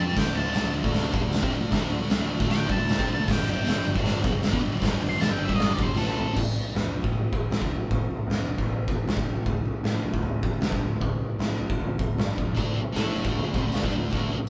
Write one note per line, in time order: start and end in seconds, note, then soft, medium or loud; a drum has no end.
0.00 0.14 F2 loud
0.00 0.17 F3 medium
0.00 0.17 C4 medium
0.00 0.17 F4 loud
0.00 0.16 A5 medium
0.16 0.25 D2 medium
0.16 0.26 D3 medium
0.16 0.27 A3 loud
0.16 0.35 G5 medium
0.16 kick loud
0.16 snare loud
0.16 crash loud
0.25 0.34 D2 medium
0.25 0.36 D3 medium
0.25 0.36 A3 medium
0.35 0.45 D2 medium
0.35 0.44 D3 medium
0.35 0.45 A3 medium
0.35 0.73 A5 loud
0.45 0.55 D2 medium
0.45 0.54 D3 medium
0.45 0.55 A3 medium
0.54 0.64 C2 medium
0.54 0.64 C3 medium
0.54 0.65 G3 loud
0.54 snare loud
0.54 open hi-hat medium
0.54 tambourine loud
0.65 0.73 D2 medium
0.65 0.74 D3 medium
0.65 0.74 A3 medium
0.73 0.82 D2 medium
0.73 0.82 D3 medium
0.73 0.83 A3 medium
0.83 1.11 D2 medium
0.83 1.13 D3 medium
0.83 1.12 A3 loud
0.83 1.12 D4 loud
0.83 kick loud
0.94 snare loud
0.94 open hi-hat medium
1.12 1.21 G2 medium
1.12 1.22 G3 loud
1.12 1.23 D4 loud
1.12 kick loud
1.22 1.41 D2 medium
1.22 1.38 D3 medium
1.22 1.39 A3 medium
1.33 snare loud
1.33 open hi-hat medium
1.33 tambourine loud
1.42 1.52 C3 medium
1.42 1.52 C4 medium
1.42 1.52 G4 loud
1.42 kick loud
1.52 1.60 D2 medium
1.52 1.60 D3 medium
1.52 1.59 A3 medium
1.60 1.71 D2 medium
1.60 1.70 D3 medium
1.60 1.71 A3 medium
1.72 1.81 D2 loud
1.72 1.79 D3 loud
1.72 1.81 A3 loud
1.72 kick loud
1.72 snare loud
1.72 open hi-hat medium
1.80 1.90 D2 medium
1.80 1.89 D3 medium
1.80 1.89 A3 medium
1.90 2.00 D2 medium
1.90 1.99 D3 medium
1.90 1.99 A3 medium
2.00 2.10 D2 medium
2.00 2.09 D3 medium
2.00 2.10 A3 medium
2.10 2.20 C2 medium
2.10 2.19 C3 loud
2.10 2.20 G3 loud
2.10 snare loud
2.10 open hi-hat medium
2.10 tambourine loud
2.21 2.30 D2 medium
2.21 2.29 D3 medium
2.21 2.30 A3 medium
2.31 2.39 D2 medium
2.31 2.38 D3 medium
2.31 2.39 A3 medium
2.39 2.67 D2 loud
2.39 2.68 D3 medium
2.39 2.68 A3 loud
2.39 2.68 D4 loud
2.39 kick loud
2.50 2.69 G5 loud
2.50 snare loud
2.50 open hi-hat medium
2.68 2.78 G2 loud
2.68 2.78 G3 medium
2.68 2.78 D4 loud
2.68 3.26 A5 medium
2.68 kick loud
2.79 2.97 D2 medium
2.79 2.94 D3 medium
2.79 2.94 A3 medium
2.89 snare loud
2.89 open hi-hat medium
2.89 tambourine loud
2.98 3.06 C3 loud
2.98 3.07 C4 medium
2.98 3.08 G4 loud
2.98 kick loud
3.07 3.16 D2 medium
3.07 3.18 D3 medium
3.07 3.18 A3 medium
3.17 3.26 D2 medium
3.17 3.28 D3 medium
3.17 3.28 A3 medium
3.27 3.36 G1 medium
3.27 3.35 G2 medium
3.27 3.36 D3 loud
3.27 kick loud
3.27 snare loud
3.27 crash loud
3.32 3.48 G5 loud
3.36 3.46 G1 medium
3.36 3.44 G2 medium
3.36 3.44 D3 medium
3.45 3.54 G1 medium
3.45 3.54 G2 medium
3.45 3.54 D3 medium
3.51 3.64 G1 medium
3.51 3.62 G2 medium
3.51 3.86 G5 loud
3.55 3.64 D3 medium
3.62 3.75 E1 medium
3.62 3.73 E2 loud
3.62 3.73 B2 loud
3.62 tambourine medium
3.67 snare loud
3.67 open hi-hat medium
3.74 3.85 G1 medium
3.74 3.84 G2 medium
3.74 3.84 D3 medium
3.85 3.94 G1 medium
3.85 3.93 G2 medium
3.85 3.95 D3 medium
3.94 4.22 G1 loud
3.94 4.23 G2 loud
3.94 4.22 D3 medium
3.94 4.23 G3 loud
3.94 kick loud
4.05 snare loud
4.05 open hi-hat medium
4.23 4.32 B1 loud
4.23 4.32 B2 loud
4.23 4.33 F#3 loud
4.23 kick loud
4.32 4.51 G1 medium
4.32 4.48 G2 medium
4.32 4.48 D3 medium
4.43 snare loud
4.43 open hi-hat medium
4.43 tambourine medium
4.52 4.61 E2 loud
4.52 4.61 E3 loud
4.52 4.62 B3 loud
4.52 kick loud
4.61 4.70 G1 medium
4.61 4.71 G2 medium
4.61 4.71 D3 medium
4.70 4.80 G1 medium
4.70 4.78 G2 medium
4.70 4.80 D3 medium
4.79 4.88 G1 medium
4.79 4.89 G2 medium
4.79 4.90 D3 loud
4.79 kick loud
4.79 open hi-hat medium
4.84 snare loud
4.89 4.98 G1 medium
4.89 5.00 G2 medium
4.89 5.00 D3 medium
4.99 5.08 G1 medium
4.99 5.09 G2 medium
4.99 5.10 D3 medium
5.09 5.18 G1 medium
5.09 5.17 G2 medium
5.09 5.19 D3 medium
5.09 5.21 C6 medium
5.18 5.29 E1 medium
5.18 5.27 E2 loud
5.18 5.29 B2 loud
5.18 5.31 A5 medium
5.18 open hi-hat medium
5.18 tambourine medium
5.22 snare loud
5.28 5.38 G1 medium
5.28 5.36 G2 medium
5.28 5.37 D3 medium
5.28 5.44 G5 loud
5.37 5.48 G1 medium
5.37 5.45 G2 medium
5.37 5.47 D3 medium
5.45 5.76 G2 medium
5.45 5.75 D3 loud
5.45 5.75 G3 loud
5.45 5.54 E5 loud
5.49 5.76 G1 medium
5.49 kick loud
5.55 5.72 D#5 loud
5.59 snare loud
5.59 open hi-hat medium
5.72 5.85 B2 medium
5.72 5.86 F#3 loud
5.72 5.84 D5 medium
5.78 5.87 B1 loud
5.78 kick loud
5.82 5.96 G2 medium
5.82 5.94 D3 medium
5.82 5.96 C5 loud
5.88 5.96 G1 medium
5.95 6.33 A1 loud
5.95 6.34 A2 loud
5.95 6.35 E3 loud
5.95 6.35 A3 loud
5.95 6.06 A4 loud
5.95 tambourine medium
6.01 snare medium
6.08 6.34 A4 loud
6.17 floor tom loud
6.36 6.54 A1 medium
6.36 kick loud
6.36 floor tom medium
6.36 crash loud
6.56 muted picked electric bass stroke soft
6.56 floor tom medium
6.74 7.01 E2 medium
6.74 snare loud
6.74 floor tom medium
6.94 floor tom medium
7.03 7.22 A1 medium
7.03 kick loud
7.13 floor tom medium
7.23 7.32 A1 medium
7.32 7.41 C2 medium
7.32 kick loud
7.32 floor tom medium
7.41 7.50 A1 medium
7.50 7.60 A1 medium
7.50 snare loud
7.50 floor tom medium
7.61 7.70 D2 loud
7.61 kick loud
7.70 7.89 A1 medium
7.70 floor tom medium
7.90 8.08 A1 medium
7.90 kick loud
7.90 floor tom medium
8.08 muted picked electric bass stroke soft
8.08 floor tom medium
8.27 8.55 E2 medium
8.27 floor tom medium
8.31 snare loud
8.49 floor tom medium
8.58 8.75 A1 medium
8.58 kick loud
8.68 floor tom medium
8.76 8.86 A1 medium
8.87 8.93 C2 medium
8.87 kick loud
8.87 floor tom medium
8.94 9.04 A1 medium
9.04 9.15 A1 medium
9.04 floor tom medium
9.09 snare loud
9.16 9.24 D2 loud
9.16 kick loud
9.25 9.44 A1 medium
9.25 floor tom medium
9.45 9.63 D2 medium
9.45 kick loud
9.45 floor tom medium
9.64 muted picked electric bass stroke soft
9.64 floor tom medium
9.83 10.11 A2 medium
9.83 snare loud
9.83 floor tom medium
10.04 floor tom medium
10.13 10.31 D2 loud
10.13 kick loud
10.23 floor tom medium
10.32 10.42 D2 medium
10.43 10.51 F2 medium
10.43 kick loud
10.43 floor tom medium
10.52 10.62 D2 medium
10.61 10.71 D2 medium
10.61 snare loud
10.61 floor tom medium
10.71 10.81 G2 loud
10.71 kick loud
10.81 11.00 D2 medium
10.81 floor tom medium
11.00 11.19 D2 medium
11.00 kick loud
11.00 floor tom medium
11.20 muted picked electric bass stroke soft
11.20 floor tom medium
11.39 11.67 A2 medium
11.39 snare loud
11.39 floor tom medium
11.60 floor tom medium
11.69 11.88 D2 medium
11.69 kick loud
11.80 floor tom medium
11.89 11.98 D2 medium
11.98 12.07 F2 medium
11.98 kick loud
11.98 floor tom medium
12.08 12.17 D2 medium
12.17 12.36 G2 medium
12.17 snare loud
12.17 floor tom medium
12.37 12.46 D2 medium
12.37 kick loud
12.37 floor tom medium
12.46 12.56 F2 medium
12.55 12.75 D2 medium
12.55 12.74 D3 medium
12.55 12.76 A3 medium
12.55 12.77 D4 loud
12.55 kick loud
12.55 floor tom medium
12.55 tambourine medium
12.76 muted distorted electric guitar stroke medium
12.76 muted picked electric bass stroke soft
12.76 floor tom medium
12.76 tambourine soft
12.93 13.24 A2 medium
12.93 13.23 A3 medium
12.93 13.24 E4 medium
12.93 13.25 A4 loud
12.93 snare loud
12.93 floor tom medium
12.93 tambourine loud
13.16 floor tom medium
13.16 tambourine medium
13.24 13.43 D2 medium
13.24 13.43 D3 medium
13.24 13.44 A3 loud
13.24 kick loud
13.29 13.46 D4 loud
13.35 floor tom medium
13.35 tambourine soft
13.44 13.53 D2 medium
13.44 13.54 D3 medium
13.44 13.55 A3 medium
13.54 13.63 F2 medium
13.54 13.64 F3 medium
13.54 13.65 C4 medium
13.54 kick loud
13.54 floor tom medium
13.54 tambourine medium
13.64 13.73 D2 medium
13.64 13.74 D3 medium
13.64 13.74 A3 medium
13.72 13.82 D2 medium
13.72 13.85 D3 medium
13.72 13.84 A3 medium
13.72 snare loud
13.72 floor tom medium
13.72 tambourine medium
13.82 13.92 G2 loud
13.82 13.93 G3 loud
13.82 13.94 D4 loud
13.82 kick loud
13.91 14.11 D2 medium
13.91 floor tom medium
13.91 tambourine medium
13.96 14.11 D3 medium
13.96 14.10 A3 medium
14.10 14.31 D2 medium
14.10 14.32 D3 medium
14.10 kick loud
14.10 floor tom medium
14.10 tambourine medium
14.15 14.33 A3 loud
14.15 14.34 D4 medium
14.30 muted picked electric bass stroke soft
14.30 muted distorted electric guitar stroke medium
14.30 floor tom medium
14.30 tambourine soft